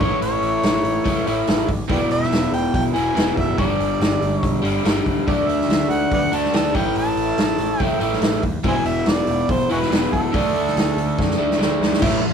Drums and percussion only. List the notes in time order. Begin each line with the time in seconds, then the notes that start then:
0.01 kick, open hi-hat
0.22 open hi-hat
0.42 open hi-hat
0.63 snare, open hi-hat
0.85 open hi-hat
1.06 kick, open hi-hat
1.27 open hi-hat
1.47 snare, open hi-hat
1.69 kick, open hi-hat
1.89 kick, open hi-hat
2.11 open hi-hat
2.22 snare
2.32 snare, open hi-hat
2.53 open hi-hat
2.74 kick, open hi-hat
2.96 open hi-hat
3.17 snare, open hi-hat
3.37 kick, open hi-hat
3.58 kick, open hi-hat
3.80 open hi-hat
4.01 snare, open hi-hat
4.22 open hi-hat
4.43 kick, open hi-hat
4.65 open hi-hat
4.85 snare, open hi-hat
5.06 kick, open hi-hat
5.28 kick, open hi-hat
5.49 open hi-hat
5.61 snare
5.70 snare, open hi-hat
5.90 open hi-hat
6.12 kick, open hi-hat
6.33 open hi-hat
6.44 snare
6.53 snare, open hi-hat
6.74 kick, open hi-hat
6.96 open hi-hat
7.17 open hi-hat
7.38 snare, open hi-hat
7.58 open hi-hat
7.80 kick, open hi-hat
8.01 open hi-hat
8.13 snare
8.22 snare, open hi-hat
8.42 kick, open hi-hat
8.63 kick, open hi-hat
8.85 open hi-hat
9.06 snare, open hi-hat
9.27 open hi-hat
9.49 kick, open hi-hat
9.70 open hi-hat
9.82 snare
9.92 snare, open hi-hat
10.13 kick, open hi-hat
10.34 kick, open hi-hat
10.56 open hi-hat
10.67 snare
10.77 snare, open hi-hat
10.98 open hi-hat
11.19 kick, snare
11.30 snare
11.51 snare
11.61 snare
11.82 snare
11.93 snare
12.02 kick, crash